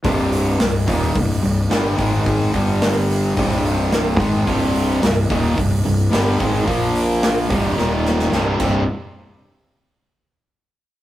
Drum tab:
CC |----------------|----------------|----------------|--------------x-|
HH |o-o-o-o-o-o-o-o-|o-o-o-o-o-o-o-o-|o-o-o-o-o-o-o-o-|o-o-o-o---------|
SD |----o-------o---|-o--o-------o---|----o-------o---|----o---o-ooo---|
BD |o-----o-o-----o-|o-o-----o-----o-|o-----o-o-----o-|o-----o-------o-|

CC |----------------|
HH |----------------|
SD |----------------|
BD |----------------|